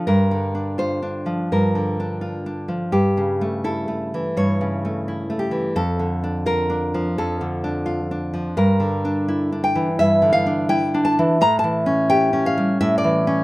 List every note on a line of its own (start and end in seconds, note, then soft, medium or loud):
0.07 1.48 G2 medium
0.07 0.77 A#4 medium
0.31 1.40 D3 soft
0.55 1.01 D4 soft
0.78 1.87 F4 soft
0.78 1.49 C5 medium
1.02 1.99 D4 soft
1.26 2.34 F3 soft
1.52 2.90 G2 soft
1.52 2.55 A#4 medium
1.75 2.82 D3 soft
2.00 2.45 D4 soft
2.21 2.93 F4 soft
2.46 2.94 D4 soft
2.68 2.93 F3 soft
2.92 4.32 G2 medium
2.92 3.62 G4 medium
3.17 4.25 C#3 soft
3.41 3.87 A3 soft
3.64 4.72 E4 soft
3.64 4.34 A4 medium
3.88 4.84 A3 soft
4.14 5.20 E3 soft
4.37 5.74 G2 soft
4.37 5.39 C#5 medium
4.61 5.66 C#3 soft
4.85 5.29 A3 soft
5.08 5.78 E4 soft
5.30 5.77 A3 soft
5.39 5.74 G4 medium
5.51 5.76 E3 soft
5.76 7.15 F2 medium
5.76 6.45 A4 medium
5.99 7.07 D3 soft
6.24 6.68 D4 soft
6.46 7.53 F4 soft
6.46 7.15 A#4 medium
6.70 7.63 D4 soft
6.94 8.00 F3 soft
7.18 8.55 F2 medium
7.18 8.19 A4 medium
7.41 8.47 D3 soft
7.64 8.10 D4 medium
7.86 8.58 F4 medium
8.11 8.59 D4 soft
8.34 8.58 F3 soft
8.57 9.96 G2 medium
8.57 9.61 A#4 medium
8.80 9.88 D3 soft
9.05 9.51 D4 soft
9.28 10.34 E4 medium
9.52 10.45 D4 soft
9.64 9.98 G5 medium
9.75 10.81 E3 medium
9.99 11.18 G2 medium
9.99 10.33 E5 medium
10.22 11.28 D3 medium
10.33 10.68 F5 medium
10.46 10.93 D4 medium
10.69 11.40 E4 medium
10.69 11.04 G5 medium
10.94 11.41 D4 medium
11.05 11.39 A5 medium
11.19 11.42 E3 soft
11.41 12.78 A2 medium
11.41 11.58 A#5 loud
11.59 12.09 A5 medium
11.64 12.70 E3 soft
11.86 12.32 C#4 medium
12.10 13.18 G4 medium
12.10 12.44 G5 medium
12.33 13.26 C#4 medium
12.46 12.80 F5 medium
12.57 13.44 G3 medium
12.81 13.44 A2 medium
12.81 12.97 E5 loud
12.98 13.44 D5 medium
13.04 13.44 E3 medium
13.27 13.44 C#4 medium